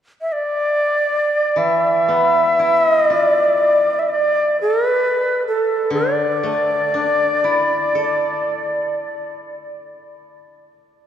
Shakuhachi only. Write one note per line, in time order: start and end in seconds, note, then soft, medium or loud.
0.21 0.34 E5 soft
0.32 1.59 D5 medium
1.58 2.82 E5 medium
2.82 3.12 D#5 medium
3.12 4.00 D5 medium
3.99 4.10 E5 soft
4.09 4.60 D5 medium
4.61 4.86 A4 medium
4.86 5.43 B4 medium
5.48 5.90 A4 medium
5.94 9.35 D5 medium